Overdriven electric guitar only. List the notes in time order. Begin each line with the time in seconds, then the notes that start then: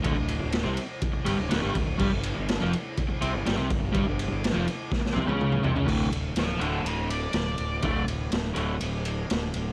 0.03 D2 D3
0.15 D2
0.40 D2
0.63 C3 C4
1.13 muted overdriven electric guitar stroke
1.25 G2 G3
1.39 D2
1.49 D2 D3
1.62 G2 G3
1.75 D2
1.86 D2
1.98 G2 G3
2.11 G2
2.36 G2
2.60 F2 F3
3.09 muted overdriven electric guitar stroke
3.21 C3 C4
3.34 G2
3.45 G2 G3
3.56 C3 C4
3.70 G2
3.80 G2
3.92 G2 G3
4.06 G2
4.28 G2
4.53 F2 F3
5.02 muted overdriven electric guitar stroke
5.13 C3 C4
5.27 C#3 C#4
5.63 C3 C4
5.75 C#3 C#4
5.86 D2 A2 D3
6.59 D2 A2 D3
7.82 D2 A2 D3
8.54 D2 A2 D3